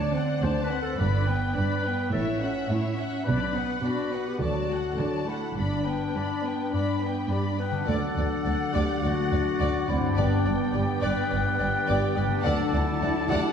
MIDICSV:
0, 0, Header, 1, 11, 480
1, 0, Start_track
1, 0, Tempo, 569801
1, 837, Time_signature, 4, 2, 24, 8
1, 4196, Tempo, 580271
1, 7076, Tempo, 568720
1, 11349, End_track
2, 0, Start_track
2, 0, Title_t, "Violin section"
2, 0, Program_c, 0, 48
2, 0, Note_on_c, 0, 81, 47
2, 93, Note_off_c, 0, 81, 0
2, 114, Note_on_c, 0, 78, 41
2, 355, Note_off_c, 0, 78, 0
2, 357, Note_on_c, 0, 81, 43
2, 595, Note_on_c, 0, 78, 42
2, 596, Note_off_c, 0, 81, 0
2, 832, Note_on_c, 0, 83, 43
2, 835, Note_off_c, 0, 78, 0
2, 1057, Note_off_c, 0, 83, 0
2, 1069, Note_on_c, 0, 79, 41
2, 1298, Note_on_c, 0, 83, 41
2, 1312, Note_off_c, 0, 79, 0
2, 1545, Note_off_c, 0, 83, 0
2, 1547, Note_on_c, 0, 79, 39
2, 1786, Note_on_c, 0, 76, 43
2, 1788, Note_off_c, 0, 79, 0
2, 2011, Note_off_c, 0, 76, 0
2, 2030, Note_on_c, 0, 78, 38
2, 2265, Note_on_c, 0, 76, 39
2, 2270, Note_off_c, 0, 78, 0
2, 2507, Note_off_c, 0, 76, 0
2, 2514, Note_on_c, 0, 78, 38
2, 2751, Note_on_c, 0, 83, 39
2, 2753, Note_off_c, 0, 78, 0
2, 2976, Note_off_c, 0, 83, 0
2, 2998, Note_on_c, 0, 78, 39
2, 3237, Note_off_c, 0, 78, 0
2, 3239, Note_on_c, 0, 83, 38
2, 3477, Note_off_c, 0, 83, 0
2, 3481, Note_on_c, 0, 78, 36
2, 3718, Note_off_c, 0, 78, 0
2, 3728, Note_on_c, 0, 81, 39
2, 3945, Note_off_c, 0, 81, 0
2, 3967, Note_on_c, 0, 78, 35
2, 4203, Note_off_c, 0, 78, 0
2, 4209, Note_on_c, 0, 81, 36
2, 4441, Note_off_c, 0, 81, 0
2, 4442, Note_on_c, 0, 78, 32
2, 4678, Note_off_c, 0, 78, 0
2, 4685, Note_on_c, 0, 83, 36
2, 4905, Note_off_c, 0, 83, 0
2, 4921, Note_on_c, 0, 79, 34
2, 5159, Note_on_c, 0, 83, 33
2, 5160, Note_off_c, 0, 79, 0
2, 5399, Note_off_c, 0, 83, 0
2, 5409, Note_on_c, 0, 79, 33
2, 5641, Note_on_c, 0, 83, 36
2, 5645, Note_off_c, 0, 79, 0
2, 5865, Note_off_c, 0, 83, 0
2, 5887, Note_on_c, 0, 79, 31
2, 6125, Note_off_c, 0, 79, 0
2, 6127, Note_on_c, 0, 83, 33
2, 6365, Note_off_c, 0, 83, 0
2, 6374, Note_on_c, 0, 79, 31
2, 6598, Note_on_c, 0, 78, 42
2, 6608, Note_off_c, 0, 79, 0
2, 8482, Note_off_c, 0, 78, 0
2, 8518, Note_on_c, 0, 79, 42
2, 10411, Note_off_c, 0, 79, 0
2, 10447, Note_on_c, 0, 81, 48
2, 11349, Note_off_c, 0, 81, 0
2, 11349, End_track
3, 0, Start_track
3, 0, Title_t, "Flute section"
3, 0, Program_c, 1, 73
3, 6597, Note_on_c, 1, 78, 39
3, 8481, Note_off_c, 1, 78, 0
3, 8513, Note_on_c, 1, 79, 41
3, 10409, Note_off_c, 1, 79, 0
3, 10440, Note_on_c, 1, 78, 42
3, 11349, Note_off_c, 1, 78, 0
3, 11349, End_track
4, 0, Start_track
4, 0, Title_t, "Oboe"
4, 0, Program_c, 2, 68
4, 6604, Note_on_c, 2, 74, 41
4, 10412, Note_off_c, 2, 74, 0
4, 10455, Note_on_c, 2, 74, 49
4, 11349, Note_off_c, 2, 74, 0
4, 11349, End_track
5, 0, Start_track
5, 0, Title_t, "Violin section"
5, 0, Program_c, 3, 48
5, 0, Note_on_c, 3, 74, 41
5, 105, Note_off_c, 3, 74, 0
5, 118, Note_on_c, 3, 72, 43
5, 357, Note_off_c, 3, 72, 0
5, 363, Note_on_c, 3, 74, 42
5, 598, Note_on_c, 3, 72, 42
5, 599, Note_off_c, 3, 74, 0
5, 836, Note_on_c, 3, 74, 45
5, 837, Note_off_c, 3, 72, 0
5, 1059, Note_off_c, 3, 74, 0
5, 1075, Note_on_c, 3, 71, 42
5, 1312, Note_on_c, 3, 74, 38
5, 1315, Note_off_c, 3, 71, 0
5, 1551, Note_off_c, 3, 74, 0
5, 1551, Note_on_c, 3, 71, 39
5, 1791, Note_off_c, 3, 71, 0
5, 1799, Note_on_c, 3, 73, 39
5, 2018, Note_off_c, 3, 73, 0
5, 2036, Note_on_c, 3, 76, 41
5, 2273, Note_off_c, 3, 76, 0
5, 2282, Note_on_c, 3, 73, 42
5, 2514, Note_on_c, 3, 76, 38
5, 2515, Note_off_c, 3, 73, 0
5, 2752, Note_off_c, 3, 76, 0
5, 2756, Note_on_c, 3, 74, 44
5, 2979, Note_off_c, 3, 74, 0
5, 3000, Note_on_c, 3, 71, 39
5, 3238, Note_on_c, 3, 74, 36
5, 3239, Note_off_c, 3, 71, 0
5, 3477, Note_off_c, 3, 74, 0
5, 3487, Note_on_c, 3, 71, 36
5, 3721, Note_off_c, 3, 71, 0
5, 3722, Note_on_c, 3, 74, 36
5, 3942, Note_off_c, 3, 74, 0
5, 3966, Note_on_c, 3, 69, 33
5, 4202, Note_off_c, 3, 69, 0
5, 4205, Note_on_c, 3, 74, 37
5, 4439, Note_off_c, 3, 74, 0
5, 4444, Note_on_c, 3, 69, 34
5, 4679, Note_off_c, 3, 69, 0
5, 4685, Note_on_c, 3, 74, 38
5, 4905, Note_off_c, 3, 74, 0
5, 4920, Note_on_c, 3, 71, 33
5, 5160, Note_off_c, 3, 71, 0
5, 5168, Note_on_c, 3, 74, 33
5, 5404, Note_off_c, 3, 74, 0
5, 5417, Note_on_c, 3, 71, 31
5, 5649, Note_off_c, 3, 71, 0
5, 5652, Note_on_c, 3, 74, 32
5, 5871, Note_off_c, 3, 74, 0
5, 5878, Note_on_c, 3, 71, 34
5, 6119, Note_on_c, 3, 74, 32
5, 6120, Note_off_c, 3, 71, 0
5, 6361, Note_off_c, 3, 74, 0
5, 6366, Note_on_c, 3, 71, 31
5, 6602, Note_on_c, 3, 74, 45
5, 6603, Note_off_c, 3, 74, 0
5, 6603, Note_on_c, 3, 74, 42
5, 6604, Note_off_c, 3, 71, 0
5, 6822, Note_off_c, 3, 74, 0
5, 6832, Note_on_c, 3, 74, 32
5, 6834, Note_off_c, 3, 74, 0
5, 6834, Note_on_c, 3, 74, 37
5, 6901, Note_off_c, 3, 74, 0
5, 7064, Note_on_c, 3, 74, 31
5, 7067, Note_off_c, 3, 74, 0
5, 7067, Note_on_c, 3, 74, 34
5, 7134, Note_off_c, 3, 74, 0
5, 7313, Note_on_c, 3, 74, 47
5, 7314, Note_off_c, 3, 74, 0
5, 7314, Note_on_c, 3, 74, 47
5, 7540, Note_off_c, 3, 74, 0
5, 7556, Note_on_c, 3, 74, 35
5, 7558, Note_off_c, 3, 74, 0
5, 7558, Note_on_c, 3, 74, 36
5, 7626, Note_off_c, 3, 74, 0
5, 7802, Note_on_c, 3, 74, 37
5, 7803, Note_off_c, 3, 74, 0
5, 7803, Note_on_c, 3, 74, 37
5, 7870, Note_off_c, 3, 74, 0
5, 8036, Note_on_c, 3, 74, 46
5, 8038, Note_off_c, 3, 74, 0
5, 8038, Note_on_c, 3, 74, 45
5, 8261, Note_off_c, 3, 74, 0
5, 8276, Note_on_c, 3, 74, 39
5, 8278, Note_off_c, 3, 74, 0
5, 8278, Note_on_c, 3, 74, 40
5, 8346, Note_off_c, 3, 74, 0
5, 8519, Note_on_c, 3, 74, 53
5, 8521, Note_off_c, 3, 74, 0
5, 8521, Note_on_c, 3, 74, 42
5, 8745, Note_off_c, 3, 74, 0
5, 8760, Note_on_c, 3, 74, 33
5, 8762, Note_off_c, 3, 74, 0
5, 8762, Note_on_c, 3, 74, 36
5, 8829, Note_off_c, 3, 74, 0
5, 8993, Note_on_c, 3, 74, 30
5, 8994, Note_off_c, 3, 74, 0
5, 8994, Note_on_c, 3, 74, 34
5, 9062, Note_off_c, 3, 74, 0
5, 9236, Note_on_c, 3, 74, 49
5, 9243, Note_off_c, 3, 74, 0
5, 9243, Note_on_c, 3, 74, 53
5, 9467, Note_off_c, 3, 74, 0
5, 9477, Note_on_c, 3, 74, 35
5, 9479, Note_off_c, 3, 74, 0
5, 9479, Note_on_c, 3, 74, 33
5, 9546, Note_off_c, 3, 74, 0
5, 9718, Note_on_c, 3, 74, 43
5, 9720, Note_off_c, 3, 74, 0
5, 9720, Note_on_c, 3, 74, 40
5, 9787, Note_off_c, 3, 74, 0
5, 9961, Note_on_c, 3, 74, 50
5, 10186, Note_off_c, 3, 74, 0
5, 10200, Note_on_c, 3, 74, 36
5, 10201, Note_off_c, 3, 74, 0
5, 10201, Note_on_c, 3, 74, 42
5, 10268, Note_off_c, 3, 74, 0
5, 10433, Note_on_c, 3, 74, 50
5, 10433, Note_on_c, 3, 78, 49
5, 10660, Note_off_c, 3, 74, 0
5, 10660, Note_off_c, 3, 78, 0
5, 10680, Note_on_c, 3, 74, 32
5, 10680, Note_on_c, 3, 78, 38
5, 10748, Note_off_c, 3, 74, 0
5, 10748, Note_off_c, 3, 78, 0
5, 10923, Note_on_c, 3, 78, 35
5, 10926, Note_on_c, 3, 74, 37
5, 10991, Note_off_c, 3, 78, 0
5, 10994, Note_off_c, 3, 74, 0
5, 11168, Note_on_c, 3, 74, 52
5, 11170, Note_on_c, 3, 78, 54
5, 11349, Note_off_c, 3, 74, 0
5, 11349, Note_off_c, 3, 78, 0
5, 11349, End_track
6, 0, Start_track
6, 0, Title_t, "Clarinet"
6, 0, Program_c, 4, 71
6, 0, Note_on_c, 4, 74, 75
6, 360, Note_on_c, 4, 72, 73
6, 373, Note_off_c, 4, 74, 0
6, 518, Note_off_c, 4, 72, 0
6, 535, Note_on_c, 4, 71, 65
6, 683, Note_off_c, 4, 71, 0
6, 693, Note_on_c, 4, 69, 64
6, 840, Note_on_c, 4, 71, 67
6, 853, Note_off_c, 4, 69, 0
6, 1311, Note_off_c, 4, 71, 0
6, 1316, Note_on_c, 4, 71, 62
6, 1782, Note_off_c, 4, 71, 0
6, 1788, Note_on_c, 4, 69, 59
6, 1896, Note_off_c, 4, 69, 0
6, 2738, Note_on_c, 4, 71, 70
6, 3195, Note_off_c, 4, 71, 0
6, 3243, Note_on_c, 4, 66, 58
6, 3602, Note_on_c, 4, 67, 51
6, 3615, Note_off_c, 4, 66, 0
6, 3714, Note_off_c, 4, 67, 0
6, 3719, Note_on_c, 4, 66, 61
6, 4423, Note_off_c, 4, 66, 0
6, 4436, Note_on_c, 4, 64, 50
6, 4670, Note_off_c, 4, 64, 0
6, 4678, Note_on_c, 4, 62, 54
6, 6095, Note_off_c, 4, 62, 0
6, 6125, Note_on_c, 4, 67, 48
6, 6233, Note_off_c, 4, 67, 0
6, 6360, Note_on_c, 4, 71, 53
6, 6592, Note_on_c, 4, 69, 62
6, 6605, Note_off_c, 4, 71, 0
6, 7306, Note_on_c, 4, 67, 58
6, 7319, Note_off_c, 4, 69, 0
6, 7546, Note_off_c, 4, 67, 0
6, 7551, Note_on_c, 4, 66, 65
6, 8259, Note_off_c, 4, 66, 0
6, 8272, Note_on_c, 4, 64, 54
6, 8511, Note_off_c, 4, 64, 0
6, 8524, Note_on_c, 4, 62, 56
6, 9009, Note_on_c, 4, 67, 55
6, 9022, Note_off_c, 4, 62, 0
6, 9240, Note_off_c, 4, 67, 0
6, 9245, Note_on_c, 4, 71, 68
6, 9951, Note_off_c, 4, 71, 0
6, 9972, Note_on_c, 4, 67, 60
6, 10203, Note_on_c, 4, 71, 64
6, 10216, Note_off_c, 4, 67, 0
6, 10435, Note_off_c, 4, 71, 0
6, 10440, Note_on_c, 4, 69, 66
6, 11154, Note_on_c, 4, 67, 64
6, 11167, Note_off_c, 4, 69, 0
6, 11349, Note_off_c, 4, 67, 0
6, 11349, End_track
7, 0, Start_track
7, 0, Title_t, "Viola section"
7, 0, Program_c, 5, 48
7, 0, Note_on_c, 5, 62, 44
7, 106, Note_off_c, 5, 62, 0
7, 123, Note_on_c, 5, 60, 38
7, 360, Note_off_c, 5, 60, 0
7, 375, Note_on_c, 5, 62, 41
7, 605, Note_off_c, 5, 62, 0
7, 612, Note_on_c, 5, 60, 42
7, 844, Note_off_c, 5, 60, 0
7, 845, Note_on_c, 5, 62, 42
7, 1064, Note_off_c, 5, 62, 0
7, 1079, Note_on_c, 5, 59, 38
7, 1309, Note_on_c, 5, 62, 40
7, 1317, Note_off_c, 5, 59, 0
7, 1550, Note_off_c, 5, 62, 0
7, 1558, Note_on_c, 5, 59, 38
7, 1794, Note_off_c, 5, 59, 0
7, 1805, Note_on_c, 5, 64, 41
7, 2021, Note_off_c, 5, 64, 0
7, 2046, Note_on_c, 5, 61, 37
7, 2278, Note_off_c, 5, 61, 0
7, 2280, Note_on_c, 5, 64, 41
7, 2508, Note_on_c, 5, 61, 39
7, 2514, Note_off_c, 5, 64, 0
7, 2750, Note_off_c, 5, 61, 0
7, 2750, Note_on_c, 5, 62, 41
7, 2975, Note_off_c, 5, 62, 0
7, 2983, Note_on_c, 5, 59, 36
7, 3227, Note_on_c, 5, 62, 37
7, 3230, Note_off_c, 5, 59, 0
7, 3469, Note_on_c, 5, 59, 34
7, 3471, Note_off_c, 5, 62, 0
7, 3712, Note_off_c, 5, 59, 0
7, 3713, Note_on_c, 5, 54, 38
7, 3937, Note_off_c, 5, 54, 0
7, 3961, Note_on_c, 5, 57, 33
7, 4200, Note_off_c, 5, 57, 0
7, 4208, Note_on_c, 5, 54, 34
7, 4436, Note_on_c, 5, 57, 35
7, 4441, Note_off_c, 5, 54, 0
7, 4675, Note_off_c, 5, 57, 0
7, 4679, Note_on_c, 5, 62, 35
7, 4902, Note_off_c, 5, 62, 0
7, 4926, Note_on_c, 5, 59, 32
7, 5152, Note_on_c, 5, 62, 35
7, 5163, Note_off_c, 5, 59, 0
7, 5393, Note_on_c, 5, 59, 32
7, 5396, Note_off_c, 5, 62, 0
7, 5635, Note_on_c, 5, 62, 32
7, 5637, Note_off_c, 5, 59, 0
7, 5862, Note_off_c, 5, 62, 0
7, 5876, Note_on_c, 5, 59, 30
7, 6115, Note_on_c, 5, 62, 34
7, 6120, Note_off_c, 5, 59, 0
7, 6357, Note_on_c, 5, 59, 32
7, 6360, Note_off_c, 5, 62, 0
7, 6600, Note_off_c, 5, 59, 0
7, 7548, Note_on_c, 5, 57, 40
7, 8000, Note_off_c, 5, 57, 0
7, 8036, Note_on_c, 5, 62, 44
7, 8104, Note_off_c, 5, 62, 0
7, 8282, Note_on_c, 5, 60, 45
7, 8510, Note_on_c, 5, 59, 44
7, 8515, Note_off_c, 5, 60, 0
7, 8751, Note_off_c, 5, 59, 0
7, 8764, Note_on_c, 5, 59, 48
7, 10413, Note_off_c, 5, 59, 0
7, 10453, Note_on_c, 5, 62, 47
7, 10683, Note_off_c, 5, 62, 0
7, 10690, Note_on_c, 5, 64, 53
7, 11349, Note_off_c, 5, 64, 0
7, 11349, End_track
8, 0, Start_track
8, 0, Title_t, "Harp"
8, 0, Program_c, 6, 46
8, 6454, Note_on_c, 6, 50, 39
8, 6492, Note_on_c, 6, 57, 31
8, 6526, Note_on_c, 6, 62, 33
8, 6565, Note_on_c, 6, 66, 32
8, 8367, Note_on_c, 6, 43, 38
8, 8402, Note_on_c, 6, 55, 33
8, 8432, Note_off_c, 6, 62, 0
8, 8442, Note_on_c, 6, 62, 33
8, 8462, Note_off_c, 6, 50, 0
8, 8480, Note_on_c, 6, 67, 34
8, 8481, Note_off_c, 6, 57, 0
8, 8518, Note_off_c, 6, 66, 0
8, 10292, Note_on_c, 6, 50, 41
8, 10329, Note_on_c, 6, 57, 36
8, 10358, Note_off_c, 6, 62, 0
8, 10368, Note_on_c, 6, 62, 36
8, 10388, Note_off_c, 6, 43, 0
8, 10405, Note_on_c, 6, 66, 35
8, 10406, Note_off_c, 6, 55, 0
8, 10445, Note_off_c, 6, 67, 0
8, 11349, Note_off_c, 6, 50, 0
8, 11349, Note_off_c, 6, 57, 0
8, 11349, Note_off_c, 6, 62, 0
8, 11349, Note_off_c, 6, 66, 0
8, 11349, End_track
9, 0, Start_track
9, 0, Title_t, "French horn section"
9, 0, Program_c, 7, 60
9, 6595, Note_on_c, 7, 62, 39
9, 6599, Note_on_c, 7, 54, 37
9, 8483, Note_off_c, 7, 54, 0
9, 8523, Note_on_c, 7, 55, 42
9, 10407, Note_off_c, 7, 62, 0
9, 10414, Note_off_c, 7, 55, 0
9, 10444, Note_on_c, 7, 54, 44
9, 10446, Note_on_c, 7, 62, 46
9, 11349, Note_off_c, 7, 54, 0
9, 11349, Note_off_c, 7, 62, 0
9, 11349, End_track
10, 0, Start_track
10, 0, Title_t, "Cello section"
10, 0, Program_c, 8, 48
10, 0, Note_on_c, 8, 38, 61
10, 281, Note_off_c, 8, 38, 0
10, 360, Note_on_c, 8, 38, 57
10, 760, Note_off_c, 8, 38, 0
10, 839, Note_on_c, 8, 43, 58
10, 1239, Note_off_c, 8, 43, 0
10, 1320, Note_on_c, 8, 43, 50
10, 1717, Note_off_c, 8, 43, 0
10, 1788, Note_on_c, 8, 45, 52
10, 2191, Note_off_c, 8, 45, 0
10, 2269, Note_on_c, 8, 45, 54
10, 2671, Note_off_c, 8, 45, 0
10, 2749, Note_on_c, 8, 47, 57
10, 3155, Note_off_c, 8, 47, 0
10, 3235, Note_on_c, 8, 47, 50
10, 3637, Note_off_c, 8, 47, 0
10, 3709, Note_on_c, 8, 50, 47
10, 4115, Note_off_c, 8, 50, 0
10, 4195, Note_on_c, 8, 50, 50
10, 4595, Note_off_c, 8, 50, 0
10, 4676, Note_on_c, 8, 43, 48
10, 5080, Note_off_c, 8, 43, 0
10, 5158, Note_on_c, 8, 43, 44
10, 5561, Note_off_c, 8, 43, 0
10, 5636, Note_on_c, 8, 43, 44
10, 6042, Note_off_c, 8, 43, 0
10, 6115, Note_on_c, 8, 43, 47
10, 6521, Note_off_c, 8, 43, 0
10, 6597, Note_on_c, 8, 38, 50
10, 6663, Note_off_c, 8, 38, 0
10, 6839, Note_on_c, 8, 38, 36
10, 6905, Note_off_c, 8, 38, 0
10, 7075, Note_on_c, 8, 38, 34
10, 7142, Note_off_c, 8, 38, 0
10, 7319, Note_on_c, 8, 38, 47
10, 7386, Note_off_c, 8, 38, 0
10, 7563, Note_on_c, 8, 38, 36
10, 7631, Note_off_c, 8, 38, 0
10, 7802, Note_on_c, 8, 38, 37
10, 7870, Note_off_c, 8, 38, 0
10, 8037, Note_on_c, 8, 38, 51
10, 8105, Note_off_c, 8, 38, 0
10, 8279, Note_on_c, 8, 38, 34
10, 8347, Note_off_c, 8, 38, 0
10, 8527, Note_on_c, 8, 43, 55
10, 8595, Note_off_c, 8, 43, 0
10, 8767, Note_on_c, 8, 43, 39
10, 8834, Note_off_c, 8, 43, 0
10, 9009, Note_on_c, 8, 43, 33
10, 9077, Note_off_c, 8, 43, 0
10, 9244, Note_on_c, 8, 43, 49
10, 9312, Note_off_c, 8, 43, 0
10, 9488, Note_on_c, 8, 43, 39
10, 9555, Note_off_c, 8, 43, 0
10, 9727, Note_on_c, 8, 43, 35
10, 9794, Note_off_c, 8, 43, 0
10, 9965, Note_on_c, 8, 43, 50
10, 10032, Note_off_c, 8, 43, 0
10, 10205, Note_on_c, 8, 43, 34
10, 10273, Note_off_c, 8, 43, 0
10, 10447, Note_on_c, 8, 38, 59
10, 10515, Note_off_c, 8, 38, 0
10, 10688, Note_on_c, 8, 38, 39
10, 10756, Note_off_c, 8, 38, 0
10, 10926, Note_on_c, 8, 38, 39
10, 10994, Note_off_c, 8, 38, 0
10, 11157, Note_on_c, 8, 38, 51
10, 11225, Note_off_c, 8, 38, 0
10, 11349, End_track
11, 0, Start_track
11, 0, Title_t, "Double bass section"
11, 0, Program_c, 10, 48
11, 0, Note_on_c, 10, 38, 57
11, 282, Note_off_c, 10, 38, 0
11, 833, Note_on_c, 10, 31, 58
11, 1236, Note_off_c, 10, 31, 0
11, 1793, Note_on_c, 10, 33, 49
11, 2193, Note_off_c, 10, 33, 0
11, 2752, Note_on_c, 10, 35, 52
11, 3157, Note_off_c, 10, 35, 0
11, 3719, Note_on_c, 10, 38, 47
11, 4120, Note_off_c, 10, 38, 0
11, 4677, Note_on_c, 10, 31, 45
11, 5081, Note_off_c, 10, 31, 0
11, 6594, Note_on_c, 10, 38, 48
11, 6660, Note_off_c, 10, 38, 0
11, 6831, Note_on_c, 10, 38, 35
11, 6897, Note_off_c, 10, 38, 0
11, 7072, Note_on_c, 10, 38, 33
11, 7140, Note_off_c, 10, 38, 0
11, 7317, Note_on_c, 10, 38, 46
11, 7384, Note_off_c, 10, 38, 0
11, 7554, Note_on_c, 10, 38, 33
11, 7621, Note_off_c, 10, 38, 0
11, 7797, Note_on_c, 10, 38, 34
11, 7864, Note_off_c, 10, 38, 0
11, 8043, Note_on_c, 10, 38, 52
11, 8110, Note_off_c, 10, 38, 0
11, 8284, Note_on_c, 10, 38, 33
11, 8352, Note_off_c, 10, 38, 0
11, 8521, Note_on_c, 10, 31, 49
11, 8588, Note_off_c, 10, 31, 0
11, 8770, Note_on_c, 10, 31, 38
11, 8838, Note_off_c, 10, 31, 0
11, 9007, Note_on_c, 10, 31, 35
11, 9074, Note_off_c, 10, 31, 0
11, 9246, Note_on_c, 10, 31, 52
11, 9313, Note_off_c, 10, 31, 0
11, 9495, Note_on_c, 10, 31, 35
11, 9562, Note_off_c, 10, 31, 0
11, 9734, Note_on_c, 10, 31, 37
11, 9801, Note_off_c, 10, 31, 0
11, 9974, Note_on_c, 10, 31, 55
11, 10041, Note_off_c, 10, 31, 0
11, 10213, Note_on_c, 10, 31, 39
11, 10281, Note_off_c, 10, 31, 0
11, 10445, Note_on_c, 10, 38, 49
11, 10512, Note_off_c, 10, 38, 0
11, 10690, Note_on_c, 10, 38, 39
11, 10757, Note_off_c, 10, 38, 0
11, 10924, Note_on_c, 10, 38, 39
11, 10992, Note_off_c, 10, 38, 0
11, 11163, Note_on_c, 10, 38, 54
11, 11231, Note_off_c, 10, 38, 0
11, 11349, End_track
0, 0, End_of_file